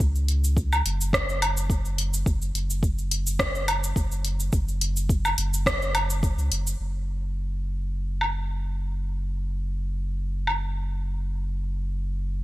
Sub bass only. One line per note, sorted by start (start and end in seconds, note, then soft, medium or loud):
0.00 0.82 C#2 medium
0.85 2.23 F#1 loud
2.26 2.51 F#1 loud
2.54 3.93 F#1 medium
3.96 4.50 F#1 medium
4.53 5.35 F#1 loud
5.37 6.37 F#1 loud
6.38 6.49 C#2 medium
6.51 6.76 F#1 medium
6.80 12.44 F#1 medium